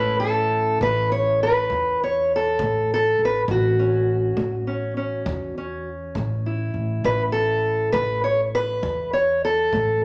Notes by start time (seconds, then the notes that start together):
Already playing: A1 A2 A3 C#4 E4 B4
0.20 A4
0.81 A1 A3 B4, kick
1.12 C#5
1.43 B4
1.70 E2 A2, kick
2.04 C#5
2.36 A4
2.59 A1 A3, kick
2.94 A4
3.19 A1
3.25 B4
3.48 A1 A2 F#4, kick
3.79 C#4
4.37 A1 A3, kick
4.67 C#4
4.97 C#4
5.26 E2 A2, kick
5.58 C#4
6.15 A1 A3, kick
6.46 E4
6.74 A1
7.04 A1 A2 B4, kick
7.32 A4
7.92 A1 A3 B4, kick
8.24 C#5
8.55 B4
8.83 E2 A2, kick
9.13 C#5
9.45 A4
9.73 A1 A3, kick